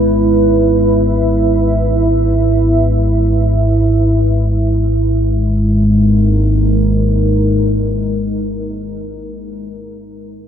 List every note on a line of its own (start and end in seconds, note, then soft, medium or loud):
0.00 4.88 G#1 medium
0.00 4.87 G#2 medium
0.00 4.89 E4 medium
0.00 4.90 B4 medium
0.00 4.90 E5 medium
4.88 9.13 G#1 medium
4.88 9.13 G#2 medium
4.88 9.14 G#3 medium
5.07 9.31 D#4 medium
5.22 9.47 A#4 medium